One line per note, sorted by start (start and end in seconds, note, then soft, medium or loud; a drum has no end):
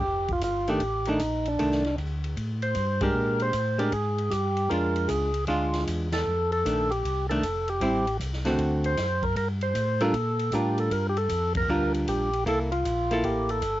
0.00 0.41 F1 medium
0.00 0.32 G4 medium
0.28 kick soft
0.28 ride soft
0.33 0.43 F4 medium
0.41 0.80 G1 medium
0.41 0.70 F4 medium
0.41 kick soft
0.41 hi-hat pedal medium
0.41 ride medium
0.68 0.80 D#3 medium
0.68 0.81 A3 medium
0.68 0.81 D4 medium
0.68 1.09 G4 medium
0.68 ride soft
0.80 1.19 A1 medium
0.80 kick soft
0.80 ride medium
1.05 1.19 D#3 medium
1.05 1.20 A3 medium
1.05 1.20 D4 medium
1.05 ride soft
1.10 1.49 D#4 medium
1.19 1.58 A#1 medium
1.19 kick soft
1.19 hi-hat pedal soft
1.19 ride medium
1.45 1.96 D4 medium
1.45 ride soft
1.59 1.97 C2 medium
1.59 1.82 D#3 medium
1.59 1.82 A3 medium
1.59 1.83 D4 medium
1.59 kick soft
1.59 ride medium
1.72 snare soft
1.84 snare soft
1.84 ride soft
1.98 2.36 D2 medium
1.98 kick soft
1.98 hi-hat pedal medium
1.98 ride medium
2.24 ride soft
2.37 2.75 A2 medium
2.37 kick soft
2.37 ride medium
2.62 3.03 C5 medium
2.62 ride soft
2.74 3.13 G2 medium
2.74 kick soft
2.74 hi-hat pedal soft
2.74 ride medium
3.01 3.51 G#3 medium
3.01 3.51 D4 medium
3.01 3.52 G4 medium
3.01 3.42 A#4 medium
3.01 kick medium
3.01 ride medium
3.14 3.52 A#2 medium
3.39 3.81 C5 loud
3.39 ride soft
3.53 3.91 A2 medium
3.53 kick soft
3.53 hi-hat pedal medium
3.53 ride medium
3.78 3.91 G#3 medium
3.78 3.91 D4 medium
3.78 3.91 G4 medium
3.78 3.93 A#4 medium
3.78 ride soft
3.92 4.30 G#2 medium
3.92 4.33 G#4 medium
3.92 kick soft
3.92 ride medium
4.18 ride soft
4.31 4.69 G2 medium
4.31 4.71 G4 medium
4.31 kick soft
4.31 hi-hat pedal medium
4.31 ride medium
4.56 ride soft
4.69 5.08 F2 medium
4.69 5.30 G#3 medium
4.69 5.30 D4 medium
4.69 5.30 F4 medium
4.69 5.10 A#4 medium
4.69 kick soft
4.69 ride medium
4.96 ride soft
5.08 5.46 C#2 medium
5.08 5.45 G#4 medium
5.08 kick soft
5.08 hi-hat pedal medium
5.08 ride medium
5.34 ride soft
5.47 5.85 D2 medium
5.47 6.07 G#3 medium
5.47 6.07 D4 medium
5.47 5.84 F4 medium
5.47 6.08 F4 medium
5.47 kick soft
5.47 ride medium
5.73 snare soft
5.73 ride soft
5.87 6.25 E2 medium
5.87 kick soft
5.87 hi-hat pedal medium
5.87 ride medium
6.12 6.51 A4 medium
6.12 snare medium
6.12 ride medium
6.27 6.64 F2 medium
6.52 6.92 A4 loud
6.52 ride soft
6.65 7.03 A#1 medium
6.65 6.88 D#3 soft
6.65 6.88 A3 medium
6.65 6.89 D4 medium
6.65 kick soft
6.65 hi-hat pedal medium
6.65 ride medium
6.91 7.27 G4 medium
6.91 ride soft
7.04 7.42 C2 medium
7.04 kick soft
7.04 ride medium
7.29 7.42 D#3 medium
7.29 7.42 A3 medium
7.29 7.42 D4 medium
7.29 7.69 A4 medium
7.29 ride soft
7.43 7.80 F1 medium
7.43 kick soft
7.43 hi-hat pedal medium
7.43 ride medium
7.68 8.17 G4 medium
7.68 ride soft
7.81 8.19 A1 medium
7.81 8.04 G3 medium
7.81 8.05 C4 medium
7.81 8.05 E4 medium
7.81 kick soft
7.81 ride medium
8.07 ride soft
8.20 8.58 C2 medium
8.20 kick soft
8.20 hi-hat pedal medium
8.20 ride medium
8.33 snare soft
8.45 8.95 D3 medium
8.45 8.95 A3 medium
8.45 8.95 C4 medium
8.45 8.95 F#4 medium
8.45 snare soft
8.45 ride soft
8.58 8.96 D2 medium
8.58 kick soft
8.58 ride medium
8.84 9.25 C5 medium
8.84 ride soft
8.97 9.35 F#2 medium
8.97 kick soft
8.97 snare soft
8.97 hi-hat pedal medium
8.97 ride medium
9.23 9.36 A#4 medium
9.23 kick medium
9.23 ride soft
9.36 9.74 G2 medium
9.36 9.48 A#4 medium
9.36 kick soft
9.36 ride medium
9.61 10.02 C5 loud
9.61 ride soft
9.75 10.13 A2 medium
9.75 kick soft
9.75 hi-hat pedal medium
9.75 ride medium
10.01 10.13 G3 medium
10.01 10.13 D4 medium
10.01 10.13 F4 medium
10.01 10.54 A4 medium
10.01 10.13 A#4 medium
10.01 ride soft
10.13 10.51 A#2 medium
10.13 kick soft
10.13 ride medium
10.39 ride soft
10.52 10.90 A2 medium
10.52 11.12 G3 soft
10.52 11.13 D4 medium
10.52 11.13 F4 soft
10.52 10.79 G4 medium
10.52 11.13 A#4 soft
10.52 kick soft
10.52 hi-hat pedal medium
10.52 ride medium
10.78 10.93 A4 medium
10.78 ride soft
10.91 11.29 G2 medium
10.91 11.07 A#4 medium
10.91 kick soft
10.91 ride medium
11.09 11.18 G4 medium
11.17 11.53 A4 medium
11.17 ride soft
11.29 11.68 F2 medium
11.29 kick soft
11.29 hi-hat pedal soft
11.29 ride medium
11.55 11.93 A#4 loud
11.55 kick medium
11.55 ride medium
11.68 12.06 D2 medium
11.68 12.28 G3 medium
11.68 12.28 D4 medium
11.68 12.29 F4 medium
11.68 12.29 A#4 medium
11.94 ride soft
12.07 12.45 A#1 medium
12.07 12.44 G4 medium
12.07 kick soft
12.07 hi-hat pedal soft
12.07 ride medium
12.33 ride soft
12.46 12.84 C2 medium
12.46 12.69 A#3 medium
12.46 12.70 E4 medium
12.46 12.70 A4 medium
12.46 12.60 A4 medium
12.46 kick soft
12.46 ride medium
12.72 13.26 F4 loud
12.72 ride soft
12.85 13.23 A#1 medium
12.85 kick soft
12.85 hi-hat pedal medium
12.85 ride medium
13.11 13.60 A#3 medium
13.11 13.61 E4 medium
13.11 13.61 A4 medium
13.11 ride soft
13.23 13.62 A1 medium
13.23 13.50 G4 medium
13.23 kick soft
13.23 ride medium
13.49 13.80 A4 medium
13.49 ride soft
13.62 13.80 G1 medium
13.62 kick soft
13.62 hi-hat pedal soft
13.62 ride medium